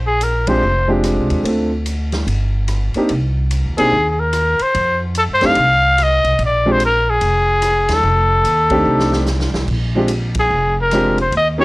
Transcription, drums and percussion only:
0.21 hi-hat pedal, ride
0.47 kick, ride
1.04 cross-stick, hi-hat pedal, ride
1.30 ride
1.45 ride
1.86 hi-hat pedal, ride
2.12 snare, ride
2.27 ride
2.68 cross-stick, hi-hat pedal, ride
2.94 ride
3.09 ride
3.51 hi-hat pedal, ride
3.78 ride
4.33 cross-stick, hi-hat pedal, ride
4.59 ride
4.74 ride
5.15 hi-hat pedal, ride
5.41 snare, ride
5.55 ride
5.98 cross-stick, hi-hat pedal, ride
6.24 ride
6.39 ride
6.80 hi-hat pedal, ride
7.21 ride
7.62 cross-stick, hi-hat pedal, ride
7.88 snare, ride
8.45 hi-hat pedal, ride
8.70 kick, ride
8.99 snare
9.13 snare
9.26 snare, hi-hat pedal
9.40 snare
9.54 snare
9.68 kick, crash
10.08 hi-hat pedal, ride
10.35 kick, ride
10.91 cross-stick, hi-hat pedal, ride
11.18 ride
11.32 ride

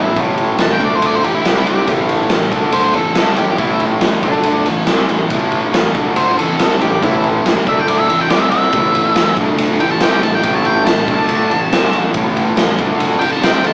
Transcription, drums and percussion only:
0.16 kick, ride
0.37 ride
0.58 snare, ride
0.80 kick, ride
1.02 ride
1.24 ride
1.45 snare, ride
1.67 ride
1.87 kick, ride
2.09 ride
2.30 snare, ride
2.52 kick, ride
2.72 ride
2.93 ride
3.15 snare, ride
3.36 snare, ride
3.58 kick, ride
3.80 ride
4.01 snare, ride
4.23 kick, ride
4.43 ride
4.66 ride
4.87 snare, ride
5.09 ride
5.30 kick, ride
5.52 ride
5.74 snare, ride
5.95 kick, ride
6.16 ride
6.39 ride
6.59 snare, ride
6.81 snare, ride
7.03 kick, ride
7.24 ride
7.46 snare, ride
7.67 kick, ride
7.88 ride
8.10 ride
8.30 snare, ride
8.51 snare, ride
8.73 kick, ride
8.95 ride
9.16 snare, ride
9.36 kick, ride
9.58 ride
9.80 ride
10.00 snare, ride
10.23 snare, ride
10.43 kick, ride
10.65 ride
10.86 snare, ride
11.08 kick, ride
11.29 ride
11.51 ride
11.72 snare, ride
11.93 ride
12.14 kick, ride
12.37 ride
12.57 snare, ride
12.79 kick, ride
13.00 ride
13.21 ride
13.43 snare, ride
13.64 ride

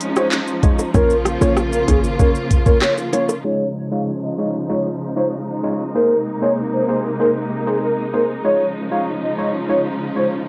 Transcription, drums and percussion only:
0.01 closed hi-hat, shaker
0.16 cross-stick, shaker
0.32 clap, shaker
0.47 shaker
0.63 kick, closed hi-hat, low bongo, shaker
0.79 high bongo, shaker
0.94 kick, high bongo, shaker
1.10 shaker
1.25 cross-stick, closed hi-hat, shaker
1.41 high bongo, shaker
1.57 cross-stick, shaker
1.73 shaker
1.88 kick, closed hi-hat, high bongo, low bongo, shaker
2.04 shaker
2.19 kick, high bongo, shaker
2.35 shaker
2.51 kick, closed hi-hat, shaker
2.66 kick, shaker
2.82 cross-stick, clap, shaker
2.98 high bongo, shaker
3.13 closed hi-hat, low bongo, shaker
3.29 high bongo, shaker

